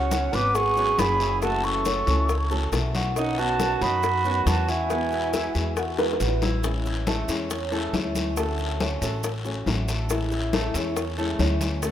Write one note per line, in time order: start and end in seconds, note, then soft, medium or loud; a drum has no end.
0.00 0.27 C#2 medium
0.00 0.11 C#3 medium
0.00 0.11 B3 medium
0.00 0.11 C#4 medium
0.00 0.36 C#4 medium
0.00 0.11 F#4 medium
0.00 0.32 F#4 medium
0.00 0.36 F#5 medium
0.11 0.32 F#3 soft
0.11 0.33 B3 medium
0.11 0.32 C#4 soft
0.11 0.32 F#4 medium
0.11 high bongo medium
0.11 high conga medium
0.11 short guiro medium
0.11 maracas medium
0.33 0.95 G#1 medium
0.33 0.54 F#3 medium
0.33 0.75 B3 medium
0.33 0.54 B3 medium
0.33 0.54 C#4 medium
0.33 0.54 F#4 medium
0.33 0.56 B4 medium
0.33 0.57 D6 loud
0.33 high conga soft
0.33 short guiro medium
0.33 maracas soft
0.55 0.99 G#4 medium
0.55 1.01 C#6 loud
0.55 muted nylon-string guitar stroke medium
0.55 high bongo medium
0.55 high conga soft
0.55 long guiro medium
0.55 maracas medium
0.77 0.97 F#3 medium
0.77 0.98 B3 medium
0.77 0.98 C#4 medium
0.77 0.98 F#4 medium
0.77 1.19 F#4 medium
0.77 high conga soft
0.77 maracas soft
0.98 2.01 F#1 medium
0.98 1.41 F#3 soft
0.98 1.42 B3 soft
0.98 1.42 C#4 medium
0.98 1.42 F#4 medium
0.98 1.42 G#4 medium
0.98 1.43 B5 loud
0.98 high bongo medium
0.98 low bongo medium
0.98 high conga medium
0.98 short guiro medium
0.98 maracas medium
1.20 1.42 E4 medium
1.20 high conga soft
1.20 short guiro medium
1.20 maracas soft
1.42 1.85 C#3 medium
1.42 1.84 E3 medium
1.42 1.84 A3 medium
1.42 1.85 A3 medium
1.42 1.85 C#4 medium
1.42 1.66 F#4 medium
1.42 1.85 F#4 medium
1.42 1.66 A5 medium
1.42 high bongo medium
1.42 high conga soft
1.42 long guiro medium
1.42 maracas medium
1.64 2.51 A4 medium
1.64 2.51 C#6 medium
1.64 high bongo soft
1.64 high conga soft
1.64 maracas soft
1.85 2.06 E3 soft
1.85 2.07 A3 soft
1.85 2.28 C#4 medium
1.85 2.06 C#4 medium
1.85 2.06 F#4 soft
1.85 high bongo medium
1.85 high conga medium
1.85 short guiro medium
1.85 maracas medium
2.07 2.69 C#2 medium
2.07 2.28 E3 medium
2.07 2.29 A3 medium
2.07 2.28 C#4 medium
2.07 2.28 F#4 medium
2.07 high bongo soft
2.07 high conga soft
2.07 short guiro medium
2.07 maracas soft
2.29 2.50 E4 medium
2.29 muted nylon-string guitar stroke medium
2.29 high bongo medium
2.29 high conga soft
2.29 long guiro medium
2.29 maracas medium
2.50 2.71 E3 medium
2.50 2.72 A3 medium
2.50 2.72 C#4 medium
2.50 2.72 F#4 medium
2.50 2.93 A4 medium
2.50 high bongo soft
2.50 high conga soft
2.50 maracas soft
2.72 3.75 B1 medium
2.72 3.15 E3 soft
2.72 3.16 A3 medium
2.72 3.16 C#4 medium
2.72 3.16 F#4 medium
2.72 high bongo medium
2.72 low bongo medium
2.72 high conga soft
2.72 short guiro medium
2.72 maracas medium
2.95 3.37 F#4 medium
2.95 high conga medium
2.95 short guiro medium
2.95 maracas soft
3.16 3.58 B2 medium
3.16 3.59 D#3 medium
3.16 3.59 C#4 medium
3.16 3.40 D#4 medium
3.16 3.59 F#4 medium
3.16 3.40 F#5 medium
3.16 high bongo medium
3.16 high conga soft
3.16 long guiro medium
3.16 maracas medium
3.38 3.80 B3 medium
3.38 3.83 F#4 medium
3.38 3.84 A5 loud
3.38 high conga soft
3.38 maracas soft
3.60 3.81 B2 medium
3.60 3.81 D#3 soft
3.60 3.81 C#4 medium
3.60 high bongo medium
3.60 high conga medium
3.60 short guiro medium
3.60 maracas medium
3.81 4.43 F#2 medium
3.81 4.03 D#3 soft
3.81 4.03 C#4 medium
3.81 4.24 D#4 medium
3.81 4.02 F#4 medium
3.81 4.47 F#4 medium
3.81 4.49 B5 loud
3.81 high conga soft
3.81 short guiro medium
3.81 maracas soft
4.03 muted nylon-string guitar stroke medium
4.03 high bongo medium
4.03 high conga soft
4.03 long guiro medium
4.03 maracas medium
4.25 4.46 D#3 medium
4.25 4.67 B3 medium
4.25 4.46 C#4 medium
4.25 4.46 F#4 medium
4.25 high conga soft
4.25 maracas soft
4.46 5.49 E2 medium
4.46 4.88 B2 soft
4.46 4.89 D#3 soft
4.46 4.90 C#4 medium
4.46 4.71 F#4 medium
4.46 4.90 F#4 medium
4.46 4.71 A5 medium
4.46 high bongo medium
4.46 low bongo medium
4.46 high conga medium
4.46 short guiro medium
4.46 maracas medium
4.68 5.99 E4 medium
4.68 4.89 F#4 medium
4.68 5.99 G#5 medium
4.68 high conga soft
4.68 short guiro medium
4.68 maracas soft
4.89 5.32 B2 medium
4.89 5.32 E3 medium
4.89 5.33 G#3 medium
4.89 5.32 B3 medium
4.89 5.33 B3 medium
4.89 5.33 F#4 medium
4.89 high bongo medium
4.89 high conga soft
4.89 long guiro medium
4.89 maracas medium
5.12 high bongo soft
5.12 high conga soft
5.12 maracas soft
5.33 5.54 E3 soft
5.33 5.55 G#3 soft
5.33 5.54 B3 medium
5.33 5.76 E4 medium
5.33 5.53 F#4 medium
5.33 high bongo medium
5.33 high conga medium
5.33 short guiro medium
5.33 maracas medium
5.55 6.16 E2 medium
5.55 5.76 E3 medium
5.55 5.76 G#3 medium
5.55 5.76 B3 medium
5.55 5.76 F#4 medium
5.55 high bongo soft
5.55 high conga soft
5.55 short guiro medium
5.55 maracas soft
5.77 5.98 F#4 medium
5.77 muted nylon-string guitar stroke medium
5.77 high bongo medium
5.77 high conga soft
5.77 long guiro medium
5.77 maracas medium
5.98 6.19 E3 medium
5.98 6.20 G#3 medium
5.98 6.20 B3 medium
5.98 6.19 F#4 medium
5.98 6.41 B4 medium
5.98 high bongo loud
5.98 high conga soft
5.98 maracas soft
6.13 high bongo medium
6.20 7.22 A1 medium
6.20 6.62 E3 soft
6.20 6.63 G#3 medium
6.20 6.63 B3 medium
6.20 6.64 F#4 medium
6.20 high conga soft
6.20 short guiro medium
6.20 maracas medium
6.28 low bongo medium
6.42 6.63 E4 medium
6.42 low bongo medium
6.42 high conga medium
6.42 short guiro medium
6.42 maracas soft
6.63 7.05 E3 medium
6.63 7.06 G#3 medium
6.63 7.07 C#4 medium
6.63 7.07 E4 medium
6.63 high bongo medium
6.63 high conga soft
6.63 long guiro medium
6.63 maracas medium
6.85 7.06 E4 medium
6.85 high conga soft
6.85 maracas soft
7.07 7.28 E3 soft
7.07 7.28 G#3 medium
7.07 7.28 A3 medium
7.07 7.28 C#4 soft
7.07 7.27 E4 medium
7.07 high bongo medium
7.07 high conga medium
7.07 short guiro medium
7.07 maracas soft
7.28 7.89 E2 medium
7.28 7.50 G#3 medium
7.28 7.71 C#4 medium
7.28 7.50 C#4 medium
7.28 7.49 E4 medium
7.28 high bongo soft
7.28 high conga soft
7.28 short guiro medium
7.28 maracas medium
7.50 muted nylon-string guitar stroke medium
7.50 high bongo medium
7.50 high conga soft
7.50 long guiro medium
7.50 maracas medium
7.71 7.93 G#3 medium
7.71 7.93 A3 medium
7.71 7.93 C#4 medium
7.71 7.92 E4 medium
7.71 high bongo soft
7.71 high conga soft
7.71 maracas soft
7.93 8.96 D2 medium
7.93 8.36 E3 soft
7.93 8.36 G#3 soft
7.93 8.36 C#4 medium
7.93 8.37 E4 medium
7.93 high bongo soft
7.93 low bongo medium
7.93 high conga medium
7.93 short guiro medium
7.93 maracas soft
8.15 high bongo soft
8.15 high conga medium
8.15 short guiro medium
8.15 maracas medium
8.37 8.79 D3 medium
8.37 8.79 A3 medium
8.37 8.80 C#4 medium
8.37 8.80 F#4 medium
8.37 high bongo medium
8.37 high conga soft
8.37 long guiro medium
8.37 maracas medium
8.58 high conga soft
8.58 maracas soft
8.80 9.01 D3 soft
8.80 9.01 A3 soft
8.80 9.01 C#4 medium
8.80 9.01 C#4 soft
8.80 9.01 F#4 medium
8.80 high bongo medium
8.80 high conga medium
8.80 short guiro medium
8.80 maracas soft
9.02 9.63 A1 medium
9.02 9.23 A3 medium
9.02 9.23 C#4 medium
9.02 9.23 F#4 medium
9.02 9.44 A4 medium
9.02 high bongo soft
9.02 high conga soft
9.02 short guiro medium
9.02 maracas medium
9.23 muted nylon-string guitar stroke medium
9.23 high bongo medium
9.23 high conga soft
9.23 long guiro medium
9.23 maracas medium
9.45 9.66 A3 medium
9.45 9.66 C#4 medium
9.45 9.66 F#4 medium
9.45 high bongo soft
9.45 high conga soft
9.45 maracas soft
9.66 10.68 A1 medium
9.66 10.09 D3 soft
9.66 10.09 A3 medium
9.66 10.09 C#4 medium
9.66 10.10 F#4 medium
9.66 high bongo soft
9.66 low bongo medium
9.66 high conga medium
9.66 short guiro medium
9.66 maracas soft
9.88 10.30 A4 medium
9.88 high bongo soft
9.88 high conga soft
9.88 short guiro medium
9.88 maracas medium
10.09 10.52 E3 medium
10.09 10.52 G#3 medium
10.09 10.53 C#4 medium
10.09 10.53 E4 medium
10.09 high bongo medium
10.09 high conga soft
10.09 long guiro medium
10.09 maracas medium
10.31 10.52 E4 medium
10.31 high conga soft
10.31 maracas soft
10.53 10.74 E3 soft
10.53 10.74 G#3 soft
10.53 10.74 A3 medium
10.53 10.74 C#4 medium
10.53 10.73 E4 medium
10.53 high bongo medium
10.53 high conga medium
10.53 short guiro medium
10.53 maracas soft
10.74 11.35 E2 medium
10.74 10.95 G#3 medium
10.74 11.17 C#4 medium
10.74 10.96 C#4 medium
10.74 10.95 E4 medium
10.74 high bongo soft
10.74 high conga soft
10.74 short guiro medium
10.74 maracas medium
10.96 muted nylon-string guitar stroke medium
10.96 high bongo medium
10.96 high conga soft
10.96 long guiro medium
10.96 maracas medium
11.18 11.39 G#3 medium
11.18 11.39 A3 medium
11.18 11.39 C#4 medium
11.18 11.39 E4 medium
11.18 high bongo soft
11.18 high conga soft
11.18 maracas soft
11.39 11.91 D2 medium
11.39 11.82 E3 medium
11.39 11.82 G#3 medium
11.39 11.81 C#4 medium
11.39 11.82 C#4 soft
11.39 11.82 E4 medium
11.39 high bongo soft
11.39 low bongo medium
11.39 high conga medium
11.39 short guiro medium
11.39 maracas soft
11.61 high bongo soft
11.61 high conga medium
11.61 short guiro medium
11.61 maracas medium
11.82 11.91 D3 medium
11.82 11.91 A3 medium
11.82 11.91 C#4 medium
11.82 11.91 F#4 medium
11.82 high bongo medium
11.82 high conga soft
11.82 long guiro medium
11.82 maracas medium